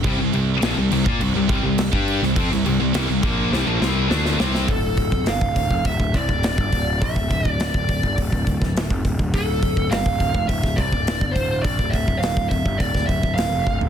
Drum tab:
CC |x-x-x-x-x-x-x-x-|x-x-x-x---------|----------------|----------------|
HH |----------------|----------------|o-o-o-o-o-o-o-o-|o-o-o-o-o-o-o-o-|
SD |----o-------o--o|-o--o---o-o-oooo|----o-------o---|----o------oo---|
FT |----------------|----------------|----------------|----------------|
BD |o------o--o--o--|o-----o---------|o-oo-ooooooo-oo-|oooo-ooooooo-ooo|

CC |----------------|----------------|
HH |o-o-o-o-o-o-o-o-|o-o-o-o-o-o-o---|
SD |----o----o--o---|----o----o--o---|
FT |----------------|---------------o|
BD |o-oo-ooooooo-oo-|oooo-ooooooo--o-|